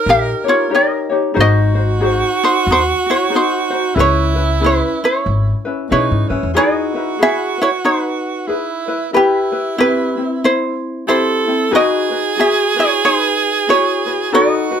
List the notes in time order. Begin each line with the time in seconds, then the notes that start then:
Already playing: D#4 A#4 C#5 F5
0.06 A#1 G4 D#5
0.44 D#4 G4 C#5
0.48 F4 C#5
0.69 D#4 G4 A#4 C#5
0.75 G4 D#5
1.10 D#4 G4 C#5
1.34 G#1 D#4 F#4 G#4 C5
1.40 F#4 D#5
1.75 D#4 F#4 C5
2.00 D#4 F#4 G#4 C5
2.44 D#4 C5
2.67 D#2 D#4
2.72 C5
3.06 E4 F#4
3.11 C#5
3.30 D#4 F#4 G#4 C5
3.35 D#4 C5
3.70 D#4 F#4 C5
3.95 C#2 C#4 E4 G#4 B4
3.99 E4 C#5
4.35 C#4 E4 B4
4.61 C#4 E4 G#4 B4
4.66 B4
5.04 E4 C#5
5.26 G#1
5.65 C#4 E4 B4
5.89 B2 C#4 D#4 E4 G#4 B4 C#5
6.11 G#2
6.28 F#2 C#4 E4 B4
6.43 E2
6.54 D#4 E4 F#4 G#4 B4 D#5
6.95 D#4 E4 B4
7.19 E4 G#4 B4 E5
7.58 E4 B4
7.63 C#5
7.85 D#4 B4
8.47 E4 G#4 B4
8.88 E4 B4
9.13 E4 G4 B4
9.52 E4 B4
9.78 C4 E4 G4 B4
10.17 C4 E4
10.44 E4 C5
11.07 C4 E4 G4 A4 C5
11.47 C4 E4
11.71 D#4 F#4 G#4 B4
11.76 D#5
12.11 D#4 F#4 B4
12.37 F#4 G#4 B4 E5
12.76 E4 F#4 B4 C#5
13.05 D#4 B4
13.67 E4 F#4 G#4 B4 C#5
14.06 F#4 B4
14.33 D#4 F#4 A4 B4 D#5
14.71 D#4 F#4 B4